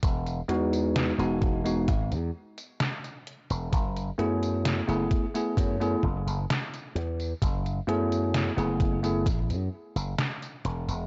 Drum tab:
HH |xxxxxxxxxx-xxxxx|xxxxxxxxxx-xxxxx|xxxxxxxxxx-xxxxx|
TB |xx-xxx-xxx-xxx-x|xx-xxx-xxx-xxx-x|xx-xxx-xxx-xxx-x|
SD |----o-------o---|----o-------o---|----o-------o---|
BD |o-----o-o-------|o-----o-o-o-----|o-----o-o-------|